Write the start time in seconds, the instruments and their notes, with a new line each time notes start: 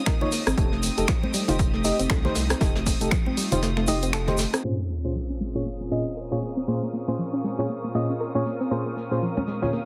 Already playing: string machine G#3 C4 D#4 F4, violin section D#6
0.06 synth arpeggio sound A#4, finger snap, kick, snare, closed hi-hat, shaker
0.21 synth arpeggio sound A#3, fm electric piano D#4 F4 C#5, low conga
0.32 synth arpeggio sound A#3, snare, closed hi-hat, open hi-hat, shaker
0.46 analog synth bass G#1, synth arpeggio sound C4, cross-stick, snare, closed hi-hat, shaker
0.57 analog synth bass F1, synth arpeggio sound A3, string machine A3 G4, fm electric piano D#4 G4 A4, kick, closed hi-hat, shaker
0.72 synth arpeggio sound A3, snare
0.83 synth arpeggio sound A3, closed hi-hat, open hi-hat, shaker
0.97 analog synth bass F1, synth arpeggio sound A3, fm electric piano D#4 G4 A4, closed hi-hat, shaker
1.07 synth arpeggio sound F3, finger snap, kick, snare, closed hi-hat, shaker
1.23 synth arpeggio sound C4, high conga
1.34 synth arpeggio sound G3, closed hi-hat, open hi-hat, shaker
1.48 analog synth bass F1, fm electric piano D#4 G4 C5, synth arpeggio sound F4, closed hi-hat, low conga, shaker
1.59 synth arpeggio sound A3, kick, closed hi-hat, shaker
1.73 synth arpeggio sound A3, snare
1.84 synth arpeggio sound A3, fm electric piano D#4 G4 D#5, closed hi-hat, open hi-hat, shaker
1.99 analog synth bass F1, synth arpeggio sound C4, closed hi-hat, shaker
2.09 analog synth bass C2, synth arpeggio sound A4, finger snap, kick, snare, closed hi-hat, shaker
2.25 synth arpeggio sound A3, fm electric piano D#4 G4 C5, snare, low conga
2.35 analog synth bass C2, synth arpeggio sound A3, snare, closed hi-hat, open hi-hat, shaker
2.49 synth arpeggio sound C4, cross-stick, snare, closed hi-hat, shaker
2.60 analog synth bass F1, synth arpeggio sound A3, fm electric piano D#4 G4 A4, string machine F4, kick, snare, closed hi-hat, shaker
2.75 synth arpeggio sound A3, snare, closed hi-hat
2.86 synth arpeggio sound A3, kick, closed hi-hat, open hi-hat, shaker
3.01 analog synth bass F1, synth arpeggio sound A3, fm electric piano D#4 G4 A4, closed hi-hat, high conga, shaker
3.11 synth arpeggio sound F3, finger snap, kick, snare, closed hi-hat, shaker
3.26 synth arpeggio sound C4, high conga
3.37 synth arpeggio sound G3, closed hi-hat, open hi-hat, shaker
3.52 analog synth bass F1, fm electric piano D#4 G4 C5, synth arpeggio sound F4, closed hi-hat, low conga, shaker
3.62 synth arpeggio sound A3, snare, closed hi-hat, shaker
3.77 synth arpeggio sound A3, finger snap, snare
3.87 analog synth bass F1, synth arpeggio sound A3, fm electric piano D#4 G4 D#5, closed hi-hat, open hi-hat, high conga, shaker
4.02 synth arpeggio sound C4, closed hi-hat, shaker
4.13 synth arpeggio sound A4, finger snap, snare, closed hi-hat, shaker
4.27 synth arpeggio sound A3, fm electric piano D#4 G4 C5, snare, closed hi-hat, low conga
4.38 synth arpeggio sound A3, snare, closed hi-hat, open hi-hat, shaker
4.53 synth arpeggio sound C4, cross-stick, snare, closed hi-hat, shaker
4.64 fm electric piano A#2 C#4 F4 G#4 C5, string machine A#2 C4 C#4 F4 G#4, synth arpeggio sound A#3, ambient pad A#4, violin section D#6, sub drop
4.79 synth arpeggio sound A#3
4.89 synth arpeggio sound A#3, shaker
4.97 ambient pad F5
5.04 fm electric piano A#2 C#4 F4 G#4 C5, synth arpeggio sound A#3, shaker
5.15 synth arpeggio sound F3, shaker
5.30 synth arpeggio sound C#4
5.41 synth arpeggio sound G#3, shaker
5.55 fm electric piano A#2 C#4 F4 G#4 C#5, synth arpeggio sound F4, shaker
5.60 ambient pad C#6
5.66 synth arpeggio sound A#3, shaker
5.81 synth arpeggio sound A#3
5.91 fm electric piano A#2 C#4 F4 G#4 D#5, synth arpeggio sound A#3, shaker
6.06 synth arpeggio sound C#4, shaker
6.16 synth arpeggio sound A#4, shaker
6.31 fm electric piano A#2 C#4 F4 G#4 C#5, synth arpeggio sound A#3
6.42 synth arpeggio sound A#3, shaker
6.57 synth arpeggio sound C4, shaker
6.67 fm electric piano A#2 C#4 F4 G#4 C5, synth arpeggio sound A#3, shaker
6.82 synth arpeggio sound A#3
6.93 synth arpeggio sound A#3, shaker
7.07 fm electric piano A#2 C#4 F4 G#4 C5, synth arpeggio sound A#3, shaker
7.19 synth arpeggio sound F3, shaker
7.33 synth arpeggio sound C#4
7.44 synth arpeggio sound G#3, shaker
7.58 fm electric piano A#2 C#4 F4 G#4 C#5, synth arpeggio sound F4, shaker
7.69 synth arpeggio sound A#3, shaker
7.84 synth arpeggio sound A#3
7.94 fm electric piano A#2 C#4 F4 G#4 D#5, synth arpeggio sound A#3, shaker
8.10 synth arpeggio sound C#4, shaker
8.20 synth arpeggio sound A#4, shaker
8.35 fm electric piano A#2 C#4 F4 G#4 C#5, synth arpeggio sound A#3
8.45 synth arpeggio sound A#3, shaker
8.60 synth arpeggio sound C4, shaker
8.71 fm electric piano A#2 C#4 F4 G#4 C5, synth arpeggio sound A#3, string machine G4, shaker
8.86 synth arpeggio sound A#3
8.97 synth arpeggio sound A#3, shaker
9.11 fm electric piano A#2 C#4 F4 G#4 C5, synth arpeggio sound A#3, shaker
9.20 synth arpeggio sound F3, ambient pad C6, shaker
9.37 synth arpeggio sound C#4, high conga
9.47 synth arpeggio sound G#3, shaker
9.62 fm electric piano A#2 C#4 F4 G#4 C#5, synth arpeggio sound F4, low conga, shaker
9.73 synth arpeggio sound A#3, shaker